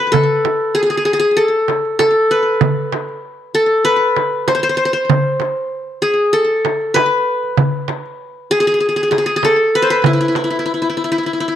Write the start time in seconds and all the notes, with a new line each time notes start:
Already playing: B4
0.01 darbuka ka
0.12 A4, frame drum, darbuka dum
0.45 frame drum
0.61 darbuka ka
0.75 G#4, darbuka ka
0.83 G#4
0.90 G#4
0.97 G#4
1.05 G#4
1.13 G#4
1.20 G#4, darbuka ka
1.37 A4
1.55 darbuka ka
1.68 darbuka tek, frame drum
1.85 darbuka ka
1.99 A4, darbuka tek, frame drum
2.16 darbuka ka
2.31 B4, darbuka ka
2.47 darbuka ka
2.61 frame drum, darbuka dum
2.92 darbuka tek, frame drum
3.09 darbuka ka
3.55 A4
3.71 darbuka ka
3.85 B4
4.02 darbuka ka
4.16 darbuka tek, frame drum
4.33 darbuka ka
4.48 C5, darbuka tek, frame drum
4.55 C5
4.63 C5
4.69 C5
4.77 C5
4.85 C5
4.93 C5, darbuka ka
5.09 frame drum, darbuka dum
5.40 darbuka tek, frame drum
5.57 darbuka ka
6.02 G#4
6.20 darbuka ka
6.33 A4
6.50 darbuka ka
6.65 darbuka tek, frame drum
6.81 darbuka ka
6.94 B4, darbuka tek, frame drum
7.43 darbuka ka
7.57 frame drum, darbuka dum
7.88 darbuka tek, frame drum
8.06 darbuka ka
8.51 G#4
8.60 G#4
8.67 G#4, darbuka ka
8.74 G#4
8.80 G#4
8.89 G#4
8.96 G#4, darbuka ka
9.03 G#4
9.11 G#4, darbuka tek, frame drum
9.18 G#4
9.26 G#4, darbuka ka
9.36 G#4
9.43 A4, darbuka tek, frame drum
9.75 B4
9.82 C5
9.90 B4, darbuka ka
10.04 E4, frame drum, darbuka dum
10.13 E4
10.21 E4
10.28 E4
10.35 E4, darbuka tek, frame drum
10.44 E4
10.50 E4, darbuka ka
10.59 E4
10.66 E4
10.74 E4
10.82 E4
10.89 E4
10.97 E4
11.04 E4
11.12 E4, darbuka ka
11.18 E4
11.26 E4, darbuka ka
11.33 E4
11.40 E4
11.48 E4